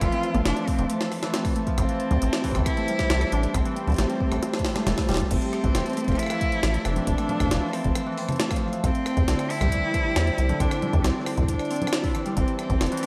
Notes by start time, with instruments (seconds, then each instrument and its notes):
Already playing: harp F3 A3 C4, ambient pad C5 E5 A5
0.01 acid bass F1, harp E3, cello F4, kick, cross-stick, closed hi-hat
0.12 harp C4, closed hi-hat
0.23 closed hi-hat
0.34 acid bass A1, harp A3, closed hi-hat, low conga
0.45 acid bass F1, harp F3, cello D4, snare, closed hi-hat
0.57 closed hi-hat
0.67 harp E3, cello C4, kick, open hi-hat
0.79 acid bass F1, closed hi-hat
0.90 cello A3, closed hi-hat
1.01 cross-stick, snare
1.12 cross-stick, open hi-hat
1.23 harp E3, cross-stick, snare, closed hi-hat
1.34 harp C4, snare, closed hi-hat
1.45 kick, cross-stick, open hi-hat
1.56 harp A3, closed hi-hat
1.67 harp F3, kick, closed hi-hat
1.78 acid bass A1, cello C4, ambient pad G4 C5, kick, cross-stick, closed hi-hat
1.89 harp E3, closed hi-hat
2.00 closed hi-hat
2.11 acid bass D2, closed hi-hat, low conga
2.22 acid bass A1, closed hi-hat
2.33 snare, closed hi-hat
2.44 harp E3, kick, open hi-hat
2.51 acid bass A1, harp C4, kick, cross-stick, closed hi-hat
2.59 kick
2.66 cello E4, kick, cross-stick, closed hi-hat
2.77 harp A3, closed hi-hat
2.88 harp G3, closed hi-hat
2.99 kick, snare, closed hi-hat
3.10 acid bass C2, harp E3, snare, closed hi-hat
3.21 cross-stick, closed hi-hat
3.32 acid bass A1, cello D4, closed hi-hat
3.43 closed hi-hat
3.54 acid bass A1, cello C4, kick, cross-stick, closed hi-hat
3.65 harp E3, closed hi-hat
3.76 harp C4, closed hi-hat
3.87 acid bass D2, closed hi-hat, low conga
3.90 closed hi-hat
3.92 closed hi-hat
3.94 closed hi-hat
3.96 acid bass A1, snare, closed hi-hat
3.98 harp A3, closed hi-hat
4.09 harp G3, closed hi-hat
4.20 kick
4.32 acid bass A1, harp E3, cross-stick, closed hi-hat
4.43 closed hi-hat, high tom
4.54 cross-stick, snare
4.59 kick, closed hi-hat
4.65 harp C4, cross-stick, snare, open hi-hat
4.76 harp A3, cross-stick, snare, closed hi-hat, mid tom
4.87 acid bass E1, harp E3, snare, closed hi-hat, mid tom
4.98 kick, cross-stick, snare, open hi-hat
5.09 acid bass E1, harp G3, snare, closed hi-hat
5.12 snare
5.14 snare
5.17 harp A3, kick, snare, closed hi-hat
5.31 acid bass F1, cello C4, ambient pad C5 E5 A5, kick, closed hi-hat, crash
5.42 closed hi-hat
5.53 cross-stick, closed hi-hat
5.64 acid bass A1, harp E3, kick, closed hi-hat
5.75 acid bass F1, harp C4, cross-stick, snare, closed hi-hat
5.86 closed hi-hat
5.90 closed hi-hat
5.93 harp A3, closed hi-hat
5.97 closed hi-hat, open hi-hat
6.01 closed hi-hat
6.04 harp F3, kick, cross-stick, closed hi-hat
6.08 acid bass F1, cross-stick, closed hi-hat
6.15 cello E4, cross-stick
6.19 cross-stick, closed hi-hat
6.23 cross-stick
6.26 harp E3, cross-stick
6.30 cross-stick, closed hi-hat
6.41 kick, closed hi-hat
6.52 closed hi-hat
6.63 acid bass A1, cross-stick, snare, closed hi-hat
6.74 closed hi-hat
6.78 cello E4
6.85 acid bass F1, harp E3, cello D4, cross-stick, closed hi-hat
6.96 harp C4, closed hi-hat, low conga
7.07 acid bass F1, kick, closed hi-hat
7.18 harp A3, cross-stick, closed hi-hat
7.29 harp F3, closed hi-hat, low conga
7.40 acid bass A1, kick, cross-stick, closed hi-hat
7.48 acid bass F1, harp E3, kick, snare, closed hi-hat
7.55 kick
7.73 cello C4, cross-stick, open hi-hat
7.84 acid bass F1, kick, closed hi-hat
7.95 cross-stick, closed hi-hat
8.06 harp E3
8.17 harp C4, open hi-hat
8.29 cross-stick, closed hi-hat, low conga
8.32 closed hi-hat
8.36 harp A3, snare, closed hi-hat
8.40 closed hi-hat
8.51 harp F3, kick, cross-stick, open hi-hat
8.56 closed hi-hat
8.73 harp E3, closed hi-hat
8.84 acid bass C2, cello C4, ambient pad E4 D5 G5, kick, cross-stick, closed hi-hat
8.95 closed hi-hat
9.06 cross-stick, closed hi-hat
9.17 acid bass E2, kick, closed hi-hat
9.28 acid bass C2, harp D3, snare, closed hi-hat
9.39 harp C4, cross-stick, closed hi-hat
9.50 cello E4, open hi-hat
9.61 acid bass C2, harp G3, kick, cross-stick, closed hi-hat
9.68 harp E3, kick, closed hi-hat
9.76 kick
9.94 harp D3, kick, cross-stick, closed hi-hat
10.16 acid bass E2, cross-stick, snare, closed hi-hat
10.27 closed hi-hat
10.38 acid bass C2, closed hi-hat
10.49 harp D3, closed hi-hat, low conga
10.60 acid bass C2, harp C4, cello D4, ambient pad A5, kick, cross-stick, closed hi-hat
10.71 cross-stick, closed hi-hat
10.82 harp G3, closed hi-hat, low conga
10.93 acid bass E2, harp E3, kick, closed hi-hat
11.04 acid bass C2, cello C4, cross-stick, snare, closed hi-hat
11.15 harp D3
11.26 cross-stick, open hi-hat
11.37 acid bass C2, kick, closed hi-hat
11.43 kick
11.48 cello D4, kick, closed hi-hat
11.54 kick
11.59 cross-stick, closed hi-hat
11.65 closed hi-hat
11.70 harp C4, closed hi-hat, open hi-hat
11.76 closed hi-hat
11.82 closed hi-hat, low conga
11.87 cross-stick
11.93 snare, closed hi-hat
12.04 harp E4, kick, open hi-hat
12.15 harp E3, cross-stick, closed hi-hat
12.26 harp G3, closed hi-hat
12.37 acid bass F1, harp E3, cello C4, synth texture A4, ambient pad E5, kick, closed hi-hat
12.48 closed hi-hat
12.59 cello C4, cross-stick, closed hi-hat
12.70 acid bass A1, kick, closed hi-hat
12.81 acid bass F1, cross-stick, snare, closed hi-hat
12.86 closed hi-hat
12.92 harp E3, closed hi-hat
12.97 closed hi-hat
13.03 harp C4, open hi-hat